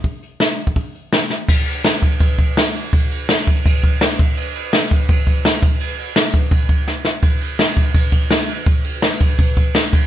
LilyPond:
\new DrumStaff \with { instrumentName = "Drums" } \drummode { \time 4/4 \tempo 4 = 167 <hho bd>8 hho8 <hho sn>8 hho16 bd16 <hho bd>8 hho8 <hho sn>8 sn8 | <cymc bd>8 cymc8 <cymc sn>8 <cymc bd>8 <cymc bd>8 <cymc bd>8 <cymc sn>8 cymc8 | <cymc bd>8 cymc8 <cymc sn>8 <cymc bd>8 <cymc bd>8 <cymc bd>8 <cymc sn>8 <cymc bd>8 | cymc8 cymc8 <cymc sn>8 <cymc bd>8 <cymc bd>8 <cymc bd>8 <cymc sn>8 <cymc bd>8 |
cymc8 cymc8 <cymc sn>8 <cymc bd>8 <cymc bd>8 <cymc bd>8 sn8 sn8 | <cymc bd>8 cymc8 <cymc sn>8 <cymc bd>8 <cymc bd>8 <cymc bd>8 <cymc sn>8 cymc8 | <cymc bd>8 cymc8 <cymc sn>8 <cymc bd>8 <cymc bd>8 <cymc bd>8 <cymc sn>8 <cymc bd>8 | }